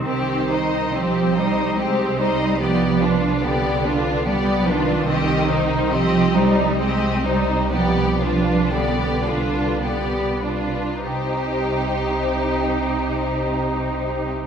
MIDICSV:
0, 0, Header, 1, 6, 480
1, 0, Start_track
1, 0, Key_signature, -3, "minor"
1, 0, Tempo, 860832
1, 24, Time_signature, 3, 2, 24, 8
1, 984, Tempo, 831025
1, 3384, Tempo, 899550
1, 4344, Tempo, 1003344
1, 4824, Tempo, 1115242
1, 5304, Tempo, 1221996
1, 5784, Tempo, 1151631
1, 7205, End_track
2, 0, Start_track
2, 0, Title_t, "Violin section"
2, 0, Program_c, 0, 48
2, 31, Note_on_c, 0, 72, 44
2, 257, Note_off_c, 0, 72, 0
2, 277, Note_on_c, 0, 75, 38
2, 517, Note_off_c, 0, 75, 0
2, 526, Note_on_c, 0, 72, 42
2, 757, Note_off_c, 0, 72, 0
2, 760, Note_on_c, 0, 75, 40
2, 988, Note_off_c, 0, 75, 0
2, 993, Note_on_c, 0, 72, 40
2, 1213, Note_off_c, 0, 72, 0
2, 1233, Note_on_c, 0, 75, 46
2, 1469, Note_on_c, 0, 74, 40
2, 1472, Note_off_c, 0, 75, 0
2, 1692, Note_off_c, 0, 74, 0
2, 1704, Note_on_c, 0, 71, 39
2, 1944, Note_off_c, 0, 71, 0
2, 1948, Note_on_c, 0, 74, 47
2, 2185, Note_off_c, 0, 74, 0
2, 2189, Note_on_c, 0, 71, 39
2, 2425, Note_off_c, 0, 71, 0
2, 2425, Note_on_c, 0, 74, 46
2, 2646, Note_off_c, 0, 74, 0
2, 2663, Note_on_c, 0, 71, 44
2, 2895, Note_on_c, 0, 75, 53
2, 2901, Note_off_c, 0, 71, 0
2, 3122, Note_off_c, 0, 75, 0
2, 3142, Note_on_c, 0, 72, 46
2, 3385, Note_off_c, 0, 72, 0
2, 3389, Note_on_c, 0, 75, 53
2, 3617, Note_off_c, 0, 75, 0
2, 3619, Note_on_c, 0, 72, 44
2, 3854, Note_off_c, 0, 72, 0
2, 3860, Note_on_c, 0, 75, 43
2, 4082, Note_off_c, 0, 75, 0
2, 4102, Note_on_c, 0, 72, 44
2, 4345, Note_on_c, 0, 74, 44
2, 4348, Note_off_c, 0, 72, 0
2, 4562, Note_off_c, 0, 74, 0
2, 4579, Note_on_c, 0, 71, 41
2, 4820, Note_on_c, 0, 74, 45
2, 4824, Note_off_c, 0, 71, 0
2, 5049, Note_on_c, 0, 71, 37
2, 5056, Note_off_c, 0, 74, 0
2, 5297, Note_on_c, 0, 74, 33
2, 5300, Note_off_c, 0, 71, 0
2, 5527, Note_off_c, 0, 74, 0
2, 5543, Note_on_c, 0, 71, 30
2, 5783, Note_off_c, 0, 71, 0
2, 5786, Note_on_c, 0, 72, 39
2, 7145, Note_off_c, 0, 72, 0
2, 7205, End_track
3, 0, Start_track
3, 0, Title_t, "Violin section"
3, 0, Program_c, 1, 48
3, 31, Note_on_c, 1, 67, 44
3, 257, Note_off_c, 1, 67, 0
3, 274, Note_on_c, 1, 72, 39
3, 516, Note_off_c, 1, 72, 0
3, 519, Note_on_c, 1, 67, 39
3, 748, Note_on_c, 1, 72, 45
3, 754, Note_off_c, 1, 67, 0
3, 982, Note_off_c, 1, 72, 0
3, 983, Note_on_c, 1, 67, 40
3, 1208, Note_off_c, 1, 67, 0
3, 1229, Note_on_c, 1, 72, 43
3, 1470, Note_off_c, 1, 72, 0
3, 1472, Note_on_c, 1, 67, 46
3, 1694, Note_off_c, 1, 67, 0
3, 1706, Note_on_c, 1, 65, 40
3, 1944, Note_on_c, 1, 67, 42
3, 1945, Note_off_c, 1, 65, 0
3, 2183, Note_off_c, 1, 67, 0
3, 2190, Note_on_c, 1, 65, 46
3, 2426, Note_off_c, 1, 65, 0
3, 2433, Note_on_c, 1, 67, 40
3, 2650, Note_off_c, 1, 67, 0
3, 2666, Note_on_c, 1, 65, 46
3, 2901, Note_on_c, 1, 67, 51
3, 2902, Note_off_c, 1, 65, 0
3, 3125, Note_off_c, 1, 67, 0
3, 3145, Note_on_c, 1, 63, 48
3, 3386, Note_off_c, 1, 63, 0
3, 3387, Note_on_c, 1, 67, 46
3, 3616, Note_off_c, 1, 67, 0
3, 3620, Note_on_c, 1, 63, 49
3, 3849, Note_on_c, 1, 67, 42
3, 3854, Note_off_c, 1, 63, 0
3, 4076, Note_off_c, 1, 67, 0
3, 4090, Note_on_c, 1, 63, 42
3, 4341, Note_on_c, 1, 67, 46
3, 4342, Note_off_c, 1, 63, 0
3, 4560, Note_off_c, 1, 67, 0
3, 4577, Note_on_c, 1, 65, 42
3, 4818, Note_on_c, 1, 67, 36
3, 4824, Note_off_c, 1, 65, 0
3, 5052, Note_on_c, 1, 65, 37
3, 5055, Note_off_c, 1, 67, 0
3, 5299, Note_on_c, 1, 67, 29
3, 5302, Note_off_c, 1, 65, 0
3, 5528, Note_off_c, 1, 67, 0
3, 5542, Note_on_c, 1, 65, 31
3, 5782, Note_on_c, 1, 67, 42
3, 5783, Note_off_c, 1, 65, 0
3, 7141, Note_off_c, 1, 67, 0
3, 7205, End_track
4, 0, Start_track
4, 0, Title_t, "Viola section"
4, 0, Program_c, 2, 48
4, 40, Note_on_c, 2, 60, 39
4, 262, Note_off_c, 2, 60, 0
4, 286, Note_on_c, 2, 63, 37
4, 522, Note_off_c, 2, 63, 0
4, 531, Note_on_c, 2, 60, 39
4, 760, Note_off_c, 2, 60, 0
4, 766, Note_on_c, 2, 63, 42
4, 992, Note_off_c, 2, 63, 0
4, 999, Note_on_c, 2, 60, 38
4, 1216, Note_off_c, 2, 60, 0
4, 1234, Note_on_c, 2, 63, 43
4, 1473, Note_off_c, 2, 63, 0
4, 1482, Note_on_c, 2, 59, 41
4, 1699, Note_off_c, 2, 59, 0
4, 1717, Note_on_c, 2, 62, 40
4, 1950, Note_off_c, 2, 62, 0
4, 1954, Note_on_c, 2, 59, 42
4, 2188, Note_off_c, 2, 59, 0
4, 2188, Note_on_c, 2, 62, 46
4, 2415, Note_on_c, 2, 59, 46
4, 2425, Note_off_c, 2, 62, 0
4, 2640, Note_off_c, 2, 59, 0
4, 2658, Note_on_c, 2, 62, 44
4, 2898, Note_off_c, 2, 62, 0
4, 2898, Note_on_c, 2, 60, 41
4, 3123, Note_off_c, 2, 60, 0
4, 3139, Note_on_c, 2, 63, 42
4, 3383, Note_off_c, 2, 63, 0
4, 3384, Note_on_c, 2, 60, 45
4, 3614, Note_off_c, 2, 60, 0
4, 3617, Note_on_c, 2, 63, 44
4, 3851, Note_on_c, 2, 60, 44
4, 3853, Note_off_c, 2, 63, 0
4, 4077, Note_off_c, 2, 60, 0
4, 4095, Note_on_c, 2, 63, 41
4, 4344, Note_off_c, 2, 63, 0
4, 4347, Note_on_c, 2, 59, 38
4, 4563, Note_off_c, 2, 59, 0
4, 4584, Note_on_c, 2, 62, 35
4, 4821, Note_on_c, 2, 59, 36
4, 4827, Note_off_c, 2, 62, 0
4, 5055, Note_on_c, 2, 62, 35
4, 5056, Note_off_c, 2, 59, 0
4, 5299, Note_on_c, 2, 59, 33
4, 5304, Note_off_c, 2, 62, 0
4, 5528, Note_off_c, 2, 59, 0
4, 5541, Note_on_c, 2, 62, 27
4, 5777, Note_on_c, 2, 63, 34
4, 5782, Note_off_c, 2, 62, 0
4, 7135, Note_off_c, 2, 63, 0
4, 7205, End_track
5, 0, Start_track
5, 0, Title_t, "Cello section"
5, 0, Program_c, 3, 48
5, 0, Note_on_c, 3, 51, 57
5, 519, Note_off_c, 3, 51, 0
5, 521, Note_on_c, 3, 53, 61
5, 755, Note_off_c, 3, 53, 0
5, 761, Note_on_c, 3, 55, 65
5, 989, Note_off_c, 3, 55, 0
5, 993, Note_on_c, 3, 56, 59
5, 1230, Note_off_c, 3, 56, 0
5, 1235, Note_on_c, 3, 55, 68
5, 1473, Note_off_c, 3, 55, 0
5, 1476, Note_on_c, 3, 53, 66
5, 1940, Note_off_c, 3, 53, 0
5, 1951, Note_on_c, 3, 50, 63
5, 2416, Note_off_c, 3, 50, 0
5, 2428, Note_on_c, 3, 55, 61
5, 2664, Note_off_c, 3, 55, 0
5, 2666, Note_on_c, 3, 51, 70
5, 3387, Note_off_c, 3, 51, 0
5, 3389, Note_on_c, 3, 53, 76
5, 3616, Note_on_c, 3, 55, 76
5, 3617, Note_off_c, 3, 53, 0
5, 3852, Note_off_c, 3, 55, 0
5, 3854, Note_on_c, 3, 56, 66
5, 4096, Note_off_c, 3, 56, 0
5, 4098, Note_on_c, 3, 55, 66
5, 4341, Note_off_c, 3, 55, 0
5, 4344, Note_on_c, 3, 53, 65
5, 4824, Note_off_c, 3, 53, 0
5, 4826, Note_on_c, 3, 50, 52
5, 5296, Note_off_c, 3, 50, 0
5, 5787, Note_on_c, 3, 48, 42
5, 7146, Note_off_c, 3, 48, 0
5, 7205, End_track
6, 0, Start_track
6, 0, Title_t, "Double bass section"
6, 0, Program_c, 4, 48
6, 31, Note_on_c, 4, 36, 47
6, 2881, Note_off_c, 4, 36, 0
6, 2906, Note_on_c, 4, 36, 60
6, 5655, Note_off_c, 4, 36, 0
6, 5784, Note_on_c, 4, 36, 41
6, 7143, Note_off_c, 4, 36, 0
6, 7205, End_track
0, 0, End_of_file